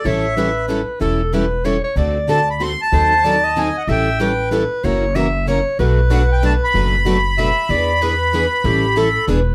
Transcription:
X:1
M:3/4
L:1/8
Q:"Swing" 1/4=189
K:Amix
V:1 name="Accordion"
e4 z2 | z6 | z2 a b =c' a- | a4 ^g f |
g4 z2 | z6 | z2 f g a b- | b6- |
b6- | b4 z2 |]
V:2 name="Clarinet"
c2 B4 | A2 B2 c c | d4 z2 | ^B2 d ^d3 |
e2 B4 | c2 e2 c2 | B6- | B2 z2 e2 |
d2 B4 | G2 A2 B2 |]
V:3 name="Steel-string acoustic guitar"
[E,G,CEA] z [E,G,CEA] z [E,G,CEA] z | [E,G,CEA] z [E,G,CEA] z [E,G,CEA] z | [D,A,=CFA] z [D,A,CFA] z [D,A,CFA] z | [^D,F,^B,^DA] z [D,F,B,DA] z [D,F,B,DA] z |
[E,G,CEA] z [E,G,CEA] z [E,G,CEA] z | [F,CE^A] z [F,CEA] z [F,CEA] z | [B,,F,A,DFB] z [B,,F,A,DFB] z [B,,F,A,DFB] z | [B,,F,A,DFB] z [B,,F,A,DFB] z [B,,F,A,DFB] z |
[E,B,D^GB] z [E,B,DGB] z [E,B,DGB] z | [E,G,CEA] z [E,G,CEA] z [E,B,D^GB] z |]
V:4 name="Steel-string acoustic guitar"
[E,G,CEA] z [E,G,CEA] z [E,G,CEA] z | [E,G,CEA] z [E,G,CEA] z [E,G,CEA] z | [D,A,=CFA] z [D,A,CFA] z [D,A,CFA] z | [^D,F,^B,^DA] z [D,F,B,DA] z [D,F,B,DA] z |
[E,G,CEA] z [E,G,CEA] z [E,G,CEA] z | [C,E,^A,CF] z [C,E,A,CF] z [C,E,A,CF] z | [B,,F,A,DF] z [B,,F,A,DF] z [B,,F,A,DF] z | [B,,F,A,DF] z [B,,F,A,DF] z [B,,F,A,DF] z |
[E,B,D^G] z [E,B,DG] z [E,B,DG] z | [E,G,CEA] z [E,G,CEA] z [E,B,D^G] z |]
V:5 name="Upright bass" clef=bass
A,,,6 | E,,,6 | D,,6 | ^D,,6 |
A,,,6 | F,,,6 | B,,,6 | F,,,6 |
E,,6 | A,,,4 E,,,2 |]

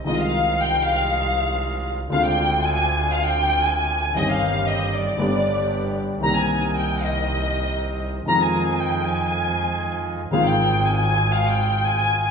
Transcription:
X:1
M:4/4
L:1/16
Q:1/4=117
K:Cm
V:1 name="Violin section"
e f3 g2 f8 z2 | f g3 a a3 f g3 a a3 | e f3 e2 d8 z2 | b a3 g2 e8 z2 |
b a3 g2 a8 z2 | f g3 a a3 f g3 a a3 |]
V:2 name="Bandoneon"
[A,EF]16 | [CDF]16 | [CEG]8 [=B,DG]8 | [CEB]16 |
[EFA]16 | [CFA]16 |]
V:3 name="Upright piano" clef=bass
[C,,C,E,A,CF]16 | [D,,D,A,CF]16 | [G,,,G,,E,G,CG]8 [G,,,G,,D,G,=B,G]8 | [C,,C,E,G,B,C]16 |
[F,,E,F,A,CF]16 | [A,,,A,,E,A,CF]16 |]
V:4 name="Double bass" clef=bass
C,,16 | D,,16 | G,,,8 G,,,8 | C,,16 |
F,,16 | A,,,16 |]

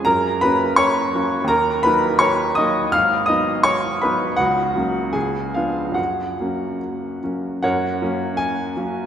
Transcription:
X:1
M:2/4
L:1/8
Q:1/4=82
K:F#
V:1 name="Grand piano"
[Aa] [Bb] [cc']2 | [Aa] [Bb] [cc'] [dd'] | [ee'] [dd'] [cc'] [Bb] | [Ff]2 [Gg] [Ee] |
[Ff]2 z2 | [Acf]2 g2 |]
V:2 name="Grand piano"
F,, [F,A,C]2 [F,A,C] | D,, [F,A,D]2 [F,A,D] | G,,, [F,B,D]2 [F,B,D] | C,, [F,A,C] C,, [E,B,=D] |
F,, [F,A,C]2 [F,A,C] | F,, [F,A,C]2 [F,A,C] |]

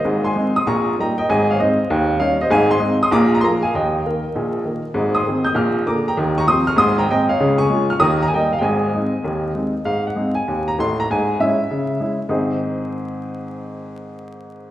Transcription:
X:1
M:4/4
L:1/16
Q:"Swing" 1/4=196
K:Ab
V:1 name="Upright piano"
[ce]2 [ac']4 [c'e']2 [bd']4 [gb]2 [eg]2 | [ea]2 [df]2 [ce]6 z2 [df]2 [ce]2 | [fa]2 [ac']4 [c'e']2 [b=d']2 b c' [fb]2 [fa]2 | [eg]12- [eg]2 z2 |
z2 [c'e']4 [e'g']2 [=d'f']4 [bd']2 [gb]2 | z2 [bd']2 [c'e']2 [d'f']2 [c'e']2 [gb]2 [eg]2 [df]2- | [df]2 [ad']4 [d'f']2 [be']2 b a [eg]2 f g | [ea]12 z4 |
f2 _g4 a4 b2 c'2 b2 | a4 _f8- f2 z2 | [A,,E,CEAc]16- | [A,,E,CEAc]16 |]
V:2 name="Upright piano" clef=bass
[A,,,A,,]4 [A,CE]4 [B,,,B,,]4 [G,B,E]4 | [A,,,A,,]4 [A,CE]4 [E,,E,]4 [G,DE]4 | [A,,,A,,]4 [A,CE]4 [B,,,B,,]4 [F,B,A]4 | [E,,E,]4 [E,B,B]4 [B,,,B,,]4 [E,B,B]4 |
[A,,,A,,]4 [E,CA]4 [B,,,B,,]4 [=D,B,A]4 | [E,,E,]4 [F,CG]4 [A,,,A,,]4 [A,CA]4 | [D,,D,]4 [A,DF]4 [E,,E,]4 [G,B,E]4 | [A,,,A,,]4 [A,CE]4 [E,,E,]4 [A,CE]4 |
A,,4 [A,CE]4 E,,4 [=A,,,=A,,]4 | A,,4 [A,D_F]4 D,4 [A,DF]4 | z16 | z16 |]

